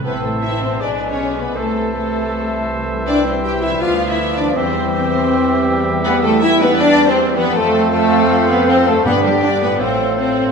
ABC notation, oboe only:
X:1
M:4/4
L:1/8
Q:1/4=160
K:C
V:1 name="Oboe"
e4 d4 | e8- | e4 d4 | e8- |
[K:Flyd] e6- e z | c8 | d4 c4 |]